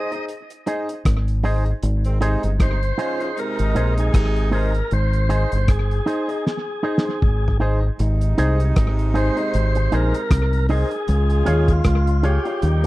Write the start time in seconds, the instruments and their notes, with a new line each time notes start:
Already playing: clean electric guitar D#4 G#4 C5, grand piano G#4 C5 D#5, tonewheel organ D#5
0.11 grand piano D#4 G#4 C5 D#5, closed hi-hat
0.28 closed hi-hat
0.50 closed hi-hat
0.66 grand piano D#4 G#4 C5 D#5, clean electric guitar D#4 G#4 C5, closed hi-hat
0.89 grand piano C5 D#5, closed hi-hat
1.05 fingered electric bass G#1, kick, cross-stick, closed hi-hat
1.28 closed hi-hat
1.43 grand piano D#4 G#4 C5 D#5, clean electric guitar D#4 G#4 C5, cross-stick, open hi-hat
1.66 muted clean electric guitar stroke, closed hi-hat
1.83 fingered electric bass G#1, closed hi-hat
2.04 horn section G#2 D#3 C4, closed hi-hat
2.21 horn section C3 G#3 D#4, grand piano D#4 G#4 C5 D#5, clean electric guitar D#4 G#4 C5, closed hi-hat
2.43 fingered electric bass G1, closed hi-hat
2.59 horn section C3 G#3 D#4, tonewheel organ C5, kick, cross-stick, closed hi-hat
2.83 closed hi-hat
2.98 horn section F3 C#4 F4, clean electric guitar D#4 G#4 C5, grand piano D#4 G#4 C5 D#5, closed hi-hat
3.20 grand piano D#4 G#4 C5 D#5, closed hi-hat
3.36 horn section C3 G#3 D#4, tonewheel organ A#4, closed hi-hat
3.59 fingered electric bass G#1, closed hi-hat
3.75 fingered electric bass A#1, clean electric guitar D#4 G#4 C5, grand piano D#4 G#4 C5 D#5, closed hi-hat
3.97 tonewheel organ G#4, grand piano C5 D#5, closed hi-hat
4.14 fingered electric bass G#1, horn section C3 G#3 D#4, kick, cross-stick, closed hi-hat
4.36 closed hi-hat
4.51 clean electric guitar D#4 G#4 C5, grand piano D#4 G#4 C5 D#5, tonewheel organ A#4, open hi-hat
4.74 closed hi-hat
4.91 fingered electric bass G#1, tonewheel organ C5, closed hi-hat
5.13 closed hi-hat
5.29 grand piano D#4 G#4 C5 D#5, clean electric guitar D#4 G#4 C5, closed hi-hat
5.52 fingered electric bass G1, closed hi-hat
5.68 tonewheel organ G#4, kick, cross-stick, closed hi-hat
5.91 closed hi-hat
6.06 clean electric guitar D#4 G#4 C5, grand piano D#4 G#4 C5 D#5, closed hi-hat
6.28 grand piano D#4 G#4 C5 D#5, closed hi-hat
6.47 tonewheel organ G#4, snare
6.83 clean electric guitar D#4 G#4 C5, grand piano D#4 G#4 C5 D#5
6.98 snare
7.05 clean electric guitar D#4 G#4 C5, grand piano C5 D#5
7.22 fingered electric bass G#1, kick, mid tom
7.48 floor tom
7.60 clean electric guitar D#4 G#4 C5, grand piano D#4 G#4 C5 D#5
7.82 muted clean electric guitar stroke
7.99 fingered electric bass G#1, horn section C3 G#3 D#4, closed hi-hat
8.21 closed hi-hat
8.38 fingered electric bass C2, clean electric guitar D#4 G#4 C5, grand piano D#4 G#4 C5 D#5, closed hi-hat
8.60 closed hi-hat
8.76 fingered electric bass G#1, kick, cross-stick, closed hi-hat
8.99 closed hi-hat
9.14 clean electric guitar D#4 G#4 C5, grand piano D#4 G#4 C5 D#5, tonewheel organ C5, closed hi-hat
9.37 grand piano D#4 G#4 C5 D#5, closed hi-hat
9.54 fingered electric bass G#1, closed hi-hat
9.75 muted clean electric guitar stroke, closed hi-hat
9.92 fingered electric bass A#1, clean electric guitar D#4 G#4 C5, grand piano D#4 G#4 C5 D#5, tonewheel organ A#4, closed hi-hat
10.14 closed hi-hat
10.31 fingered electric bass C2, kick, cross-stick, closed hi-hat
10.53 closed hi-hat
10.69 grand piano D#4 G#4 C5 D#5, clean electric guitar D#4 G#4 C5, tonewheel organ G#4, open hi-hat
10.91 muted clean electric guitar stroke, closed hi-hat
11.08 fingered electric bass C#2, horn section C#3 G#3 F4, closed hi-hat
11.30 closed hi-hat
11.46 fingered electric bass D#2, clean electric guitar F4 G#4 C#5, grand piano F4 G#4 C#5 F5, closed hi-hat
11.68 tonewheel organ F4, kick, closed hi-hat
11.84 fingered electric bass C#2, kick, cross-stick, closed hi-hat
12.07 closed hi-hat
12.23 clean electric guitar F4 G#4 C#5, grand piano F4 G#4 C#5 F5, tonewheel organ G4, closed hi-hat
12.45 grand piano F4 G#4 C#5 F5, closed hi-hat
12.62 fingered electric bass D#2, horn section A#2 G3 D#4, closed hi-hat
12.84 muted clean electric guitar stroke, closed hi-hat